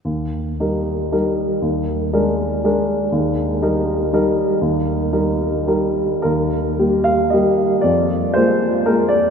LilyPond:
<<
  \new Staff \with { instrumentName = "Grand piano" } { \time 3/4 \key ees \major \tempo 4 = 117 r2. | r2. | r2. | r2. |
bes'4. f''8 ees''4 | d''4 c''4 bes'8 d''8 | }
  \new Staff \with { instrumentName = "Grand piano" } { \time 3/4 \key ees \major ees,4 <g ees' bes'>4 <g ees' bes'>4 | ees,4 <aes d' bes'>4 <aes d' bes'>4 | ees,4 <g ees' bes'>4 <g ees' bes'>4 | ees,4 <g ees' bes'>4 <g ees' bes'>4 |
ees,4 <g bes g'>4 <g bes g'>4 | f,4 <aes bes f'>4 <aes bes f'>4 | }
>>